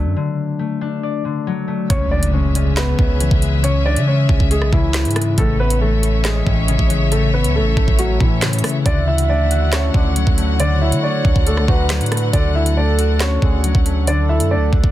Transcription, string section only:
1.90 5.34 C#3 medium
1.90 5.34 C#4 medium
1.90 5.34 G#4 medium
1.90 5.34 E5 medium
5.38 8.82 C#4 medium
5.38 14.91 E4 medium
5.38 8.82 C#5 medium
5.38 8.82 E5 medium
8.86 14.91 D3 medium
8.86 14.91 F#4 medium
8.86 14.91 F#5 loud

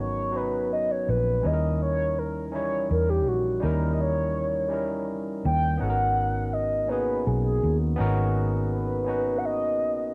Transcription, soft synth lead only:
0.00 0.38 C#5 medium
0.36 0.72 B4 loud
0.73 0.92 D#5 medium
0.91 1.11 C#5 medium
1.09 1.48 B4 loud
1.46 1.81 D#5 loud
1.82 2.20 C#5 loud
2.18 2.54 A#4 medium
2.55 2.88 C#5 medium
2.91 3.11 A#4 medium
3.09 3.30 G4 medium
3.28 3.65 F#4 medium
3.64 3.92 A#4 medium
3.93 4.02 D#5 medium
4.01 5.08 C#5 loud
5.45 5.82 G5 loud
5.81 6.55 F#5 loud
6.53 6.91 D#5 medium
6.89 7.28 B4 loud
7.27 7.43 G#4 medium
7.44 7.77 G#4 medium
8.72 9.39 B4 medium
9.38 9.47 F#5 medium
9.45 10.14 D#5 loud

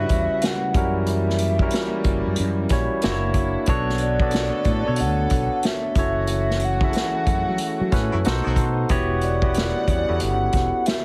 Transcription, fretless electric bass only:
0.11 0.26 E2 medium
0.75 1.68 F#2 medium
2.06 2.21 F#1 medium
2.27 2.36 F#2 medium
2.39 2.64 F#2 loud
2.71 2.87 A#1 medium
3.05 3.55 F#1 loud
3.68 4.49 B1 loud
4.66 4.82 A2 medium
4.88 5.02 B2 medium
5.00 5.25 D2 medium
5.32 5.47 B1 medium
5.97 6.89 F#1 medium
7.28 7.43 F#2 medium
7.48 7.57 F#3 medium
7.81 7.90 F#3 medium
7.93 8.09 A2 medium
8.13 8.23 F#2 medium
8.26 8.41 B1 medium
8.46 8.55 B1 medium
8.57 8.83 B2 medium
8.91 9.71 E1 medium
9.89 10.04 E2 medium
10.09 10.18 E2 medium
10.22 10.47 G1 medium
10.55 10.70 E1 medium

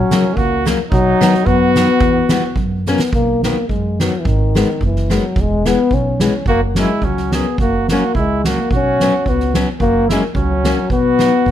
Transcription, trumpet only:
0.00 0.38 C#4 medium
0.36 0.66 F#4 medium
0.91 1.48 D#4 medium
1.46 2.56 F#4 loud
6.47 6.61 F#4 medium
6.79 7.05 E4 medium
7.04 7.34 C#4 medium
7.33 7.59 G#4 medium
7.59 7.87 F#4 medium
7.89 8.14 F#4 medium
8.15 8.43 E4 medium
8.44 8.69 F#4 medium
8.72 9.27 F#4 medium
9.27 9.56 F#4 medium
9.81 10.08 F#4 medium
10.08 10.20 E4 medium
10.36 10.87 C#4 medium
10.92 11.51 F#4 medium

